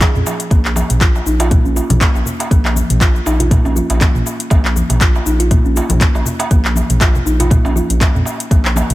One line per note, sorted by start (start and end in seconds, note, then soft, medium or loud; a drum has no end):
0.01 0.14 G#4 medium
0.01 kick loud
0.01 clap medium
0.01 closed hi-hat soft
0.01 darbuka ka loud
0.01 high conga loud
0.01 darbuka tek medium
0.01 shaker medium
0.15 0.22 F2 medium
0.15 mid tom medium
0.15 shaker soft
0.26 0.39 F3 medium
0.26 darbuka tek medium
0.26 shaker medium
0.40 closed hi-hat medium
0.40 shaker soft
0.51 0.82 A#1 loud
0.51 0.59 A#3 loud
0.51 kick loud
0.51 closed hi-hat soft
0.51 darbuka tek medium
0.51 shaker medium
0.65 clap medium
0.65 shaker soft
0.76 darbuka tek medium
0.76 high conga medium
0.76 shaker medium
0.90 1.20 A#1 medium
0.90 closed hi-hat medium
0.90 mid tom medium
0.90 shaker soft
1.01 1.09 F4 medium
1.01 kick loud
1.01 clap loud
1.01 closed hi-hat soft
1.01 shaker soft
1.15 darbuka tek medium
1.15 shaker soft
1.26 1.57 A#1 medium
1.26 1.34 D#4 medium
1.26 shaker medium
1.40 1.50 F4 medium
1.40 closed hi-hat medium
1.40 darbuka tek medium
1.40 shaker soft
1.51 1.59 A#3 loud
1.51 kick loud
1.51 closed hi-hat soft
1.51 mid tom medium
1.51 high conga medium
1.51 shaker medium
1.65 1.80 A#1 medium
1.65 1.71 C#4 medium
1.65 shaker soft
1.76 1.89 F4 medium
1.76 darbuka tek medium
1.76 shaker medium
1.90 2.05 A#1 loud
1.90 closed hi-hat medium
1.90 mid tom medium
1.90 high conga loud
1.90 low conga medium
1.90 shaker soft
2.01 2.14 A#3 medium
2.01 kick loud
2.01 clap medium
2.01 closed hi-hat soft
2.01 darbuka tek medium
2.01 shaker medium
2.15 2.22 A#1 medium
2.15 darbuka ka medium
2.15 shaker soft
2.26 low conga medium
2.26 shaker medium
2.40 closed hi-hat medium
2.40 darbuka ka loud
2.40 darbuka tek medium
2.40 shaker soft
2.51 2.82 A#1 loud
2.51 2.59 A#3 loud
2.51 kick loud
2.51 closed hi-hat soft
2.51 shaker soft
2.65 clap medium
2.65 darbuka tek medium
2.65 shaker soft
2.76 high conga medium
2.76 shaker medium
2.90 3.20 A#1 loud
2.90 closed hi-hat medium
2.90 mid tom medium
2.90 high conga medium
2.90 shaker soft
3.01 3.09 F4 medium
3.01 kick loud
3.01 clap loud
3.01 closed hi-hat soft
3.01 darbuka tek medium
3.01 shaker soft
3.15 shaker soft
3.26 3.57 A#1 medium
3.26 3.34 D#4 medium
3.26 darbuka tek medium
3.26 shaker medium
3.40 3.50 F4 medium
3.40 closed hi-hat medium
3.40 low conga medium
3.40 shaker soft
3.51 3.59 A#3 loud
3.51 kick loud
3.51 closed hi-hat soft
3.51 mid tom medium
3.51 darbuka ka medium
3.51 shaker soft
3.65 3.80 A#1 medium
3.65 3.71 C#4 medium
3.65 darbuka tek medium
3.65 shaker soft
3.76 3.89 F4 medium
3.76 high conga medium
3.76 shaker medium
3.90 4.05 A#1 loud
3.90 closed hi-hat medium
3.90 darbuka tek medium
3.90 shaker soft
4.01 4.14 A#3 medium
4.01 kick loud
4.01 clap loud
4.01 closed hi-hat soft
4.01 darbuka ka medium
4.01 high conga medium
4.01 shaker soft
4.15 4.22 A#1 medium
4.15 mid tom medium
4.15 shaker soft
4.26 darbuka tek medium
4.26 shaker medium
4.40 closed hi-hat medium
4.40 shaker soft
4.50 4.82 A#1 loud
4.50 4.59 A#3 medium
4.50 kick loud
4.50 closed hi-hat soft
4.50 darbuka tek medium
4.50 shaker soft
4.65 clap medium
4.65 shaker soft
4.76 high conga medium
4.76 shaker medium
4.89 5.20 A#1 loud
4.89 closed hi-hat medium
4.89 mid tom medium
4.89 darbuka tek medium
4.89 shaker soft
5.01 5.09 F4 medium
5.01 kick loud
5.01 clap loud
5.01 closed hi-hat soft
5.01 shaker soft
5.15 darbuka tek medium
5.15 shaker soft
5.26 5.57 A#1 medium
5.26 5.34 D#4 medium
5.26 shaker medium
5.40 5.50 F4 medium
5.40 closed hi-hat medium
5.40 shaker soft
5.51 5.59 A#3 loud
5.51 kick loud
5.51 closed hi-hat soft
5.51 mid tom medium
5.51 darbuka tek medium
5.51 high conga medium
5.51 shaker soft
5.65 5.80 A#1 medium
5.65 5.71 C#4 medium
5.65 shaker soft
5.76 5.89 F4 medium
5.76 darbuka tek medium
5.76 shaker medium
5.89 6.05 A#1 loud
5.89 closed hi-hat medium
5.89 mid tom medium
5.89 high conga medium
5.89 low conga loud
5.89 shaker soft
6.01 6.14 A#3 medium
6.01 kick loud
6.01 clap loud
6.01 closed hi-hat soft
6.01 shaker soft
6.15 6.22 A#1 medium
6.15 darbuka ka medium
6.15 darbuka tek medium
6.15 shaker soft
6.25 low conga medium
6.25 shaker medium
6.39 closed hi-hat medium
6.39 darbuka ka loud
6.39 darbuka tek medium
6.39 shaker soft
6.51 6.82 A#1 loud
6.51 6.58 A#3 loud
6.51 kick loud
6.51 closed hi-hat soft
6.51 shaker soft
6.65 clap medium
6.65 shaker soft
6.75 high conga medium
6.75 darbuka tek medium
6.75 shaker medium
6.90 7.19 A#1 medium
6.90 closed hi-hat medium
6.90 mid tom medium
6.90 high conga soft
6.90 shaker soft
7.01 7.09 F4 medium
7.01 kick loud
7.01 clap loud
7.01 closed hi-hat soft
7.01 darbuka tek medium
7.01 shaker soft
7.15 low conga medium
7.15 shaker soft
7.26 7.57 A#1 medium
7.26 7.33 D#4 medium
7.26 shaker medium
7.40 7.50 F4 loud
7.40 closed hi-hat medium
7.40 darbuka ka medium
7.40 darbuka tek medium
7.40 low conga medium
7.40 shaker soft
7.50 7.58 A#3 loud
7.50 kick loud
7.50 closed hi-hat soft
7.50 mid tom medium
7.50 darbuka ka medium
7.50 shaker soft
7.65 7.80 A#1 medium
7.65 7.71 C#4 medium
7.65 darbuka tek medium
7.65 shaker soft
7.76 7.88 F4 medium
7.76 high conga medium
7.76 shaker medium
7.90 8.05 A#1 loud
7.90 closed hi-hat medium
7.90 shaker soft
8.00 8.14 A#3 medium
8.00 kick loud
8.00 clap loud
8.00 closed hi-hat soft
8.00 darbuka ka loud
8.00 darbuka tek medium
8.00 high conga medium
8.00 shaker soft
8.15 8.22 F2 loud
8.15 mid tom medium
8.15 shaker soft
8.25 darbuka tek medium
8.25 shaker medium
8.40 closed hi-hat medium
8.40 shaker soft
8.51 8.82 A#1 loud
8.51 8.59 A#3 loud
8.51 kick loud
8.51 closed hi-hat soft
8.51 darbuka tek medium
8.51 shaker soft
8.65 clap medium
8.65 shaker soft
8.76 8.84 A#3 medium
8.76 high conga medium
8.76 darbuka tek medium
8.76 shaker medium
8.90 8.94 A#1 loud
8.90 closed hi-hat medium
8.90 mid tom medium
8.90 shaker soft